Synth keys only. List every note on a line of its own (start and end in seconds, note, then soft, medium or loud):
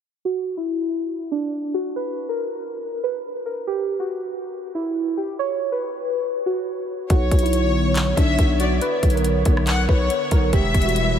0.25 0.56 F#4 loud
0.57 1.27 E4 medium
1.32 1.72 D4 medium
1.74 1.91 F#4 medium
1.96 2.27 B4 loud
2.29 2.99 A#4 medium
3.04 3.44 B4 medium
3.46 3.63 A#4 medium
3.67 3.98 G4 loud
4.00 4.70 F#4 medium
4.75 5.15 E4 medium
5.17 5.34 G4 medium
5.39 5.70 C#5 loud
5.72 6.42 B4 medium
6.46 7.06 F#4 medium
7.11 7.41 F#4 medium
7.43 8.13 E4 medium
8.17 8.58 D4 medium
8.60 8.77 F#4 medium
8.82 9.12 B4 loud
9.15 9.85 A#4 medium
9.89 10.29 B4 medium
10.31 10.48 A#4 medium
10.53 10.84 G4 loud
10.85 11.19 F#4 medium